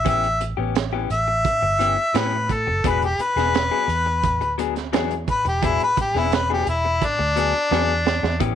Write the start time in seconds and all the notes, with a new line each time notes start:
0.05 A1 E3 B3 C#4 G4 E5, kick, closed hi-hat
0.24 closed hi-hat
0.41 muted clean electric guitar stroke, closed hi-hat
0.57 A1 B3 C#4 G4
0.75 muted clean electric guitar stroke, snare, closed hi-hat
0.93 E3 B3 C#4 G4
1.10 A1 E5, muted clean electric guitar stroke, closed hi-hat
1.28 muted clean electric guitar stroke
1.45 kick, closed hi-hat
1.62 G1, muted clean electric guitar stroke
1.79 E3 B3 C#4 G4, closed hi-hat
1.97 muted clean electric guitar stroke
2.14 A2 E3 B3 C#4 G4 B4, snare, closed hi-hat
2.49 A4, muted clean electric guitar stroke, kick, closed hi-hat
2.67 F#1, muted clean electric guitar stroke
2.84 E1 F#3 B3 D4 G#4 B4, kick, closed hi-hat
3.02 G4, closed hi-hat
3.18 B4, muted fingered electric bass stroke, muted clean electric guitar stroke, closed hi-hat
3.36 E1 B3 D4 G#4, snare, closed hi-hat
3.54 muted clean electric guitar stroke, snare, closed hi-hat
3.71 F#3 B3 D4 G#4
3.88 E2, muted clean electric guitar stroke, closed hi-hat
4.06 muted clean electric guitar stroke
4.24 kick, closed hi-hat
4.41 D2, muted clean electric guitar stroke, closed hi-hat
4.58 F#3 B3 D4 G#4, closed hi-hat
4.75 muted clean electric guitar stroke, snare, closed hi-hat
4.93 E2 F#3 B3 D4 G#4, snare, closed hi-hat
5.11 closed hi-hat
5.28 B4, muted clean electric guitar stroke, kick, closed hi-hat
5.45 E1 G4, muted clean electric guitar stroke, closed hi-hat
5.62 F#3 B3 D4 G#4, kick, closed hi-hat
5.66 E4
5.80 B4, closed hi-hat
5.97 muted clean electric guitar stroke, kick, closed hi-hat
6.01 G4
6.15 E1 B3 D4 G#4, snare
6.19 E4
6.32 B4, muted clean electric guitar stroke, snare, closed hi-hat
6.50 F#3 B3 D4 G4 G#4
6.67 E1 E4, muted clean electric guitar stroke, closed hi-hat
6.85 muted clean electric guitar stroke
7.02 D4, kick, closed hi-hat
7.19 D2, muted clean electric guitar stroke
7.36 F#3 B3 D4 G#4, closed hi-hat
7.54 muted clean electric guitar stroke
7.71 E2 F#3 B3 D4 G#4, snare
8.05 muted clean electric guitar stroke, snare
8.23 E2, muted clean electric guitar stroke, snare
8.40 A1 E3 B3 C#4 G4, kick, closed hi-hat